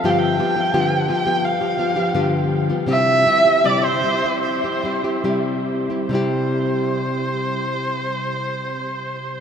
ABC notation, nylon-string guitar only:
X:1
M:4/4
L:1/16
Q:1/4=75
K:C
V:1 name="Nylon-string guitar"
[G,,D,F,B,FG]2 [F,B,FG] [F,B,FG] [G,,D,F,B,FG]2 [F,B,FG] [F,B,FG]2 [F,B,FG] [F,B,FG] [F,B,FG] [G,,D,F,B,FG]3 [F,B,FG] | [C,G,CEG]2 [G,CEG] [CEG] [C,G,CEG]2 [G,CEG] [CEG]2 [CEG] [G,CEG] [CEG] [C,G,CEG]3 [CEG] | [C,G,CEG]16 |]